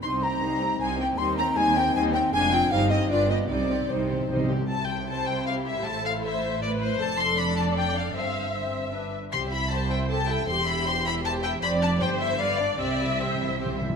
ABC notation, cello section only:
X:1
M:3/4
L:1/8
Q:1/4=156
K:Cm
V:1 name="Cello section" clef=bass
C,,2 C,,2 C,,2 | E,,2 E,,2 E,,2 | F,,2 G,,2 G,,2 | C,2 C,2 C,2 |
[K:C] C,6 | A,,6 | F,,6 | G,,4- G,, z |
C,,6 | E,,6 | F,,2 G,,4 | C,4- C, z |]